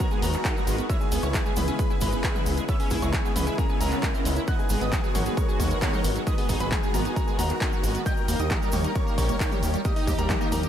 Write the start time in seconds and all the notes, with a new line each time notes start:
Already playing: downlifter
0.00 F#3 F#4 A#4 A#5, kick, closed hi-hat
0.11 D#3 G#3 B3 F#4 G#4 G#5, cabasa
0.22 D#2 B3 F#4 A#4 A#5, open hi-hat, cabasa
0.34 clap, closed hi-hat, cabasa
0.45 D#3 G#3 B3 D#4 F#4, kick, clap, closed hi-hat, cabasa
0.56 D#3 F#3 G#3 B3 F#4, cabasa
0.67 G#1 G#3, open hi-hat, cabasa
0.78 B3, closed hi-hat, cabasa
0.89 C#3 G#3 B3 E4 C#5 E5 E6, kick, closed hi-hat, cabasa
1.01 G#4 G#5, cabasa
1.12 C#2 B3 G#4 G#5, open hi-hat, cabasa
1.23 C#2 C#3 G#3 B3 C#4 E4 C#5 C#6, closed hi-hat, cabasa
1.34 C#3 G#3 B3 E4 G#4 G#5, kick, clap, closed hi-hat, mid tom, cabasa
1.45 C#3 G#3 B3 E4 G#4 G#5, cabasa
1.56 C#2 B3 G#4 B4 B5, open hi-hat, mid tom, cabasa
1.68 C#3 G#3 B3 C#4 E4 G#4 G#5, closed hi-hat, cabasa
1.79 G#4 B4 B5, kick, closed hi-hat, cabasa
1.90 C#3 G#3 B3 E4 G#4 G#5, cabasa
2.01 G#1 G#3 G#4 B4 B5, kick, open hi-hat, cabasa
2.13 B3, closed hi-hat, cabasa
2.24 C#3 G#3 B3 C#4 E4, kick, clap, closed hi-hat, cabasa
2.35 C#3 G#3 B3 E4, mid tom, cabasa
2.46 C#2, open hi-hat, cabasa
2.57 G#3, closed hi-hat, cabasa
2.68 C#3 G#3 B3 E4 C#5 E5 E6, kick, closed hi-hat, cabasa
2.80 C#4 G#4 G#5, open hi-hat, cabasa
2.90 C#2 E4 G#4 G#5, kick, open hi-hat, cabasa
3.02 C#2 C#3 G#3 B3 E4 C#5 C#6, closed hi-hat, cabasa
3.13 C#3 G#3 B3 E4 G#4 G#5, kick, clap, closed hi-hat, mid tom, cabasa
3.25 C#3 G#3 B3 E4 G#4 G#5, cabasa
3.36 C#2 C#4 G#4 B4 B5, open hi-hat, mid tom, cabasa
3.47 C#3 G#3 B3 E4 G#4 G#5, closed hi-hat, cabasa
3.58 G#3 C#4 A#4 A#5, kick, closed hi-hat, cabasa
3.69 C#3 G#3 B3 E4 G#4 G#5, cabasa
3.80 C#2 G#3 C#4 A#4 A#5, open hi-hat, cabasa
3.92 B3, clap, closed hi-hat, cabasa
4.03 C#3 G#3 B3 E4, kick, clap, closed hi-hat, cabasa
4.14 C#3 G#3 B3 C4 E4, cabasa
4.25 C#2 G#3, open hi-hat, cabasa
4.36 E4, closed hi-hat, cabasa
4.48 D#3 F#3 G#3 B3 F#4 D#5 F#5 F#6, kick, closed hi-hat, cabasa
4.59 G#4 G#5, cabasa
4.69 G#1 G#3 G#4 G#5, open hi-hat, cabasa
4.81 G#1 D#3 G#3 B3 F#4 B4 D#5 D#6, closed hi-hat, cabasa
4.92 D#3 G#3 B3 D#4 F#4 G#4 G#5, kick, clap, closed hi-hat, mid tom, cabasa
5.03 D#3 F#3 G#3 B3 F#4 G#4 G#5, cabasa
5.15 G#1 G#3 A#4 C#5 C#6, open hi-hat, mid tom, cabasa
5.26 D#3 G#3 B3 F#4 G#4 G#5, closed hi-hat, cabasa
5.37 A#4 C#5 C#6, kick, closed hi-hat, cabasa
5.48 D#3 G#3 B3 F#4 G#4 G#5, cabasa
5.59 D#2 F#3 A#4 C#5 C#6, kick, open hi-hat, cabasa
5.71 G#3, closed hi-hat, cabasa
5.82 D#3 G#3 B3 F#4, kick, clap, closed hi-hat, cabasa
5.93 D#3 G#3 B3 D#4 F#4, mid tom, cabasa
6.04 G#1, open hi-hat, cabasa
6.15 F#3, closed hi-hat, cabasa
6.27 D#3 G#3 B3 F#4 B4 D#5 D#6, kick, closed hi-hat, cabasa
6.38 B3 G#4 G#5, open hi-hat, cabasa
6.49 G#1 D#4 G#4 G#5, kick, open hi-hat, cabasa
6.60 G#1 D#3 F#3 G#3 B3 F#4 G#4 B4 B5, closed hi-hat, cabasa
6.72 D#3 G#3 B3 F#4 G#4 G#5, kick, clap, closed hi-hat, mid tom, cabasa
6.83 D#3 G#3 B3 F#4 G#4 G#5, cabasa
6.94 G#1 B3 F#4 A#4 A#5, open hi-hat, mid tom, cabasa
7.05 D#3 G#3 B3 D#4 F#4 G#4 G#5, closed hi-hat, cabasa
7.16 F#3 F#4 A#4 A#5, kick, closed hi-hat, cabasa
7.27 D#3 G#3 B3 F#4 G#4 G#5, cabasa
7.39 D#2 B3 F#4 A#4 A#5, open hi-hat, cabasa
7.49 clap, closed hi-hat, cabasa
7.61 D#3 G#3 B3 D#4 F#4, kick, clap, closed hi-hat, cabasa
7.72 D#3 F#3 G#3 B3 F#4, cabasa
7.83 G#1 G#3, open hi-hat, cabasa
7.95 B3, closed hi-hat, cabasa
8.06 D#3 G3 A#3 G4 D#5 G5 G6, kick, closed hi-hat, cabasa
8.17 A#4 A#5, cabasa
8.28 D#2 A#3 A#4 A#5, open hi-hat, cabasa
8.39 D#2 D#3 G3 A#3 D#4 G4 D#5 D#6, closed hi-hat, cabasa
8.50 D#3 G3 A#3 G4 A#4 A#5, kick, clap, closed hi-hat, mid tom, cabasa
8.62 D#3 G3 A#3 G4 A#4 A#5, cabasa
8.72 D#2 A#3 A#4 C#5 C#6, open hi-hat, mid tom, cabasa
8.84 D#3 G3 A#3 D#4 G4 A#4 A#5, closed hi-hat, cabasa
8.95 A#4 C#5 C#6, kick, closed hi-hat, cabasa
9.06 D#3 G3 A#3 G4 A#4 A#5, cabasa
9.18 A#1 G3 A#4 C#5 C#6, kick, open hi-hat, cabasa
9.29 A#3, closed hi-hat, cabasa
9.40 D#3 G3 A#3 D#4 G4, kick, clap, closed hi-hat, cabasa
9.51 D#3 G3 A#3 G4, mid tom, cabasa
9.63 D#2, open hi-hat, cabasa
9.74 G3, closed hi-hat, cabasa
9.85 D#3 G3 A#3 G4 D#5 D#6, kick, closed hi-hat, cabasa
9.96 D#4 D#5, open hi-hat, cabasa
10.07 D#2 D#4 G4 D#5, kick, open hi-hat, mid tom, cabasa
10.18 D#2 D#3 G3 A#3 G4 A#4 A#5, closed hi-hat, cabasa
10.29 D#3 G3 A#3 D#4 G4 D#5, kick, clap, closed hi-hat, mid tom, cabasa
10.41 D#3 G3 A#3 D#4 G4 D#5, cabasa
10.52 D#2 D#4 G4 A#4 A#5, open hi-hat, mid tom, cabasa
10.63 D#3 G3 A#3 D#4 G4 D#5, closed hi-hat, cabasa